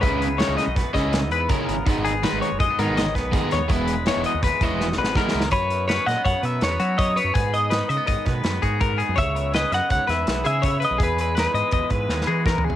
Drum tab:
HH |x--x--x--x--x--x--x--x--x--x--|x--x--x--x--x--x--x--x--x--x--|x--x--x--x--x--x--------------|x--x--x--x--x--x--x--x--x--x--|
SD |------o--o--o--o--o-----------|------o-----------o--o-----o--|------o-----o-----o-o-o-o-o-o-|------o--o--------o-----------|
FT |------------------------------|------------------------------|------------------------------|------------------------------|
BD |o-----------o--o--------o-----|o-----------o--------o--o-----|o-----------o--o--------o-----|o-----------o-----------o-----|

HH |x--x--x--x--x--x--x--x--x--x--|x--x--x--x--x--x--x--x--x--x--|x--x--x--x--x--x--------------|
SD |------o--------o--o-----------|------o--o-----o--o-----------|------o-----------o-o---o-----|
FT |------------------------------|------------------------------|--------------------------o-o-|
BD |o-----------o--o-----o--o-----|o-----------o-----------o-----|o-----------o--o--------o-----|